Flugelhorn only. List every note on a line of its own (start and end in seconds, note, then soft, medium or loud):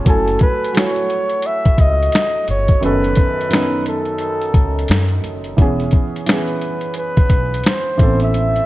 0.08 0.39 A4 medium
0.42 0.79 B4 loud
0.77 1.48 C#5 loud
1.47 1.82 E5 loud
1.81 2.49 D#5 loud
2.50 2.86 C#5 loud
2.85 3.87 B4 loud
3.88 5.21 A4 medium
6.29 6.93 B4 medium
6.98 7.69 B4 medium
7.67 8.22 C5 medium
8.23 8.66 E5 loud